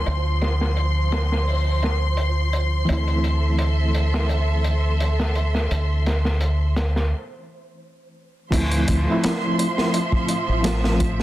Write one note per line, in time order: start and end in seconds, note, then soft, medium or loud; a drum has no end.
0.00 2.83 F3 medium
0.00 2.85 F3 medium
0.00 2.85 A3 medium
0.00 2.86 C4 medium
0.00 2.87 E4 medium
0.00 7.11 C5 medium
0.00 7.08 C6 medium
0.06 2.86 D2 medium
0.06 closed hi-hat medium
0.41 snare soft
0.41 closed hi-hat medium
0.61 snare soft
0.77 closed hi-hat medium
1.12 snare soft
1.12 closed hi-hat medium
1.32 snare soft
1.47 open hi-hat medium
1.83 snare soft
1.83 closed hi-hat medium
2.17 closed hi-hat medium
2.53 closed hi-hat medium
2.85 8.47 E3 medium
2.85 8.49 A3 medium
2.85 7.08 A4 medium
2.85 7.08 E5 medium
2.85 closed hi-hat medium
2.90 5.68 D2 medium
2.90 8.50 C4 medium
2.90 8.51 E4 medium
3.08 closed hi-hat soft
3.24 closed hi-hat medium
3.59 closed hi-hat medium
3.95 closed hi-hat medium
4.14 snare soft
4.29 closed hi-hat medium
4.64 closed hi-hat medium
5.00 closed hi-hat medium
5.20 snare soft
5.35 closed hi-hat medium
5.55 snare soft
5.71 7.12 D2 medium
5.71 closed hi-hat medium
6.06 snare soft
6.06 closed hi-hat medium
6.25 snare soft
6.41 closed hi-hat medium
6.76 snare medium
6.76 closed hi-hat medium
6.96 snare soft
8.51 8.84 D2 loud
8.51 9.01 F3 medium
8.51 11.23 F3 medium
8.51 9.02 A3 medium
8.51 9.02 C4 medium
8.51 9.03 E4 medium
8.51 11.23 E5 medium
8.51 11.23 C6 medium
8.51 kick loud
8.51 closed hi-hat medium
8.51 crash medium
8.71 closed hi-hat soft
8.88 9.05 D2 medium
8.88 kick medium
8.88 closed hi-hat medium
9.04 10.59 F3 medium
9.04 10.60 A3 medium
9.08 10.61 C4 medium
9.08 10.63 E4 loud
9.24 snare loud
9.24 closed hi-hat medium
9.59 closed hi-hat medium
9.78 snare soft
9.94 closed hi-hat medium
10.12 kick medium
10.29 closed hi-hat medium
10.49 11.23 A1 loud
10.63 11.23 F3 medium
10.63 11.23 A3 medium
10.63 11.23 C4 medium
10.63 11.23 F4 medium
10.63 snare loud
10.63 closed hi-hat medium
10.84 snare medium
11.00 kick medium
11.00 closed hi-hat medium
11.20 snare soft